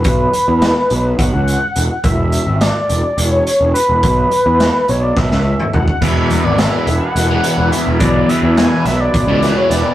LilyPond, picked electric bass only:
\new Staff \with { instrumentName = "Picked electric bass" } { \clef bass \time 7/8 \key e \mixolydian \tempo 4 = 106 b,,8 r16 e,8 r16 b,,8 b,,16 cis,8 r16 e,,16 r16 | e,,8. gis,,8 r16 e,,16 r16 e,,8 r16 e,,16 r16 e,,16 | b,,8 r16 e,8 r16 b,,8 b,,16 cis,8 r16 e,,16 r16 | e,,8. gis,,8 r16 e,,16 r16 e,,8 r16 e,,16 r16 e,,16 |
b,,8 r16 e,8 r16 b,,8 b,,16 cis,8 r16 e,,16 r16 | }